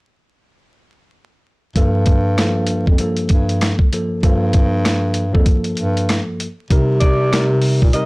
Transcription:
1.75 G2 F3 A#3 A4, kick, closed hi-hat
2.06 kick, closed hi-hat
2.37 G2 F3 A#3 A4, cross-stick, snare, closed hi-hat
2.67 closed hi-hat
2.87 F2, kick
2.98 G2 F3 A#3 A4, closed hi-hat
3.17 closed hi-hat
3.29 G2, kick, closed hi-hat
3.49 closed hi-hat
3.61 cross-stick, snare, closed hi-hat
3.79 kick
3.92 G2 F3 A#3 A4, closed hi-hat
4.22 G2 F3 A#3 A4, kick, closed hi-hat
4.53 kick, closed hi-hat
4.85 cross-stick, snare, closed hi-hat
5.14 closed hi-hat
5.32 F2 G2 F3 A#3 A4, kick
5.46 kick, closed hi-hat
5.64 closed hi-hat
5.77 G2, closed hi-hat
5.97 closed hi-hat
6.09 cross-stick, snare, closed hi-hat
6.40 closed hi-hat
6.70 C3 G3 D#4 A#4, kick, closed hi-hat
7.00 D5, kick, closed hi-hat
7.31 C3 G3 D#4 A#4, cross-stick, snare, closed hi-hat
7.61 open hi-hat
7.82 A#2, kick
7.93 C3 G3 D#4 A#4 D#5, closed hi-hat

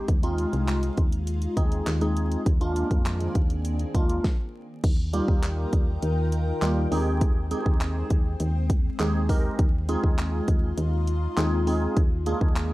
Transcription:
Already playing: G#3
0.08 D#2 D#4 F4, kick, closed hi-hat
0.23 G#3 C4 D#4 F4, closed hi-hat
0.38 closed hi-hat
0.53 C2, closed hi-hat
0.68 clap, closed hi-hat
0.83 closed hi-hat
0.97 D#2, kick, closed hi-hat
1.12 closed hi-hat
1.27 closed hi-hat
1.42 closed hi-hat
1.57 D#2 G#3 C4 D#4 G#4, kick, closed hi-hat
1.72 closed hi-hat
1.87 D#2, clap, closed hi-hat
2.01 G#3 C4 D#4 G#4, closed hi-hat
2.17 closed hi-hat
2.32 closed hi-hat
2.46 D#2 D#3 A#3 C4 D4 G#4, kick, closed hi-hat
2.61 G#3 A#3 D4 F4, closed hi-hat
2.76 closed hi-hat
2.91 F2, kick, closed hi-hat
3.06 clap, closed hi-hat
3.21 closed hi-hat
3.35 D#2, kick, closed hi-hat
3.50 closed hi-hat
3.65 closed hi-hat
3.79 closed hi-hat
3.94 D#2 G#3 A#3 D4 F4, kick, closed hi-hat
4.09 closed hi-hat
4.24 kick, snare
4.84 D#2 D#3 D#4 F4 A#4 G5, kick, closed hi-hat, crash
5.13 G3 A#3 D#4 F4 G4, closed hi-hat
5.28 D#2, kick
5.43 clap, closed hi-hat
5.73 D#2, kick, closed hi-hat
6.02 D#2, closed hi-hat
6.32 closed hi-hat
6.62 D#2 G3 A#3 D#4 F4 G4, clap, closed hi-hat
6.91 D#2 G#3 C4 D#4 G4 G#4, open hi-hat
7.21 kick, closed hi-hat
7.51 G#3 C4 D#4 G4 G#4, closed hi-hat
7.66 D#2, kick
7.81 clap, closed hi-hat
8.10 D#2, kick, closed hi-hat
8.40 D#2, closed hi-hat
8.70 kick, closed hi-hat
8.99 D#2 G#3 C4 D#4 G4 G#4, clap, closed hi-hat
9.29 G#3 C4 D#4 G4 A#4, kick, open hi-hat
9.59 D#2 D#4 F4, kick, closed hi-hat
9.89 G#3 C4 D#4 F4 G#4, closed hi-hat
10.04 D#2, kick
10.18 clap, closed hi-hat
10.48 D#2, kick, closed hi-hat
10.78 D#2, closed hi-hat
11.07 closed hi-hat
11.37 D#2 G#3 C4 D#4 F4 G#4, clap, closed hi-hat
11.67 G#3 C4 D#4 F4 G#4, open hi-hat
11.97 D#2 D#3 A#3 C4 D4 G#4, kick, closed hi-hat
12.26 G#3 A#3 D4 F4 G#4, closed hi-hat
12.41 D#2, kick
12.56 clap, closed hi-hat

